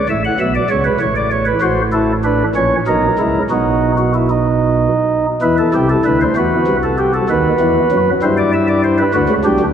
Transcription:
0.09 A1 A2 E5
0.25 F#5
0.40 B1 B2 E5
0.55 D5
0.70 C#2 C#3 C#5
0.85 B4
1.00 A1 A2 C#5
1.16 D5
1.31 C#5
1.46 B4
1.61 A1 A2 F#4 C5
1.92 E4 A4
2.24 D4 B4
2.55 A#1 A#2 C#4 C#5
2.87 B1 B2 D#4 A#4
3.19 C#2 C#3 E4
3.50 B1 B2 D#4 F#4
3.98 F#4
4.14 E4
4.30 D#4
5.42 E2 E3 E4 B4
5.58 A4
5.74 C2 C3 G4
5.90 A4
6.05 D2 D3 B4
6.21 C5
6.36 E2 E3 F#4 B4
6.67 C2 C3
6.83 A4
6.99 G4
7.14 A4
7.30 D#2 D#3 B4
7.60 E2 E3
7.92 F#2 F#3
8.22 G2 G3 E4 C5
8.38 D5
8.53 E5
8.68 D5
8.84 C5
8.99 B4
9.14 D2 D3 F#4 B4
9.29 C#2 C#3
9.45 B1 B2 D4 G4
9.60 D2 D3

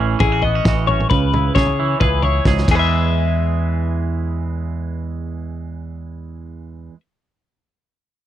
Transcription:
Already playing: A1 A2 G#4
0.00 E3 C#4
0.20 A1 E4 G#4, kick, floor tom
0.32 F#4
0.42 B3 D#5, floor tom
0.55 C#4
0.65 A1 E3 F#4, kick, snare, floor tom
0.87 C#4 C#5, mid tom
1.00 mid tom
1.10 C#2 C#3 B4, kick, floor tom
1.34 E4, floor tom, mid tom
1.55 C#3 G#4 C#5, kick, snare, mid tom
1.66 floor tom
1.79 E3 E4
2.00 C#2 G#4 B4, kick, floor tom
2.23 E4 C#5, floor tom
2.45 C#2 G#2 G#4, kick, snare
2.57 snare
2.67 E2 E3 G#4, kick, crash
2.73 G#3 B4
2.77 G#4 E5

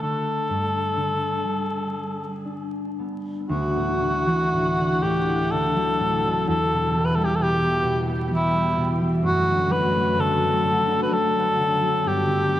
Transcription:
Already playing: A3
0.02 D3 A4
0.49 G2
0.97 D3
1.44 G3
2.45 D4
2.99 B3
3.49 D2 E3 D4 F#4 F#5
3.77 A2
4.01 D3
4.27 E3
4.52 A2
4.79 D3
5.02 A2 G4
5.27 E4
5.51 D3 A4
5.76 F#3
6.00 A2
6.24 D3
6.44 E2 B3 G4
6.48 A4
6.72 B2
6.95 E3
7.05 B4
7.15 G3 A4
7.24 G4
7.35 A4
7.40 B2 G4
7.62 E3
7.84 B2
8.07 B3
8.31 E3
8.35 E4
8.54 G3
8.77 B2
9.01 E3
9.21 F#2 D3 A3 F#4
9.25 F#4
9.48 D3
9.70 F#3 B4
9.93 A3
10.18 D3 A4
10.40 F#3
10.64 D3
10.87 D4
11.03 B4
11.12 F#3 A4
11.35 A3
11.59 D3
11.80 F#3
12.05 G2 B3 G4
12.27 D3
12.53 B3

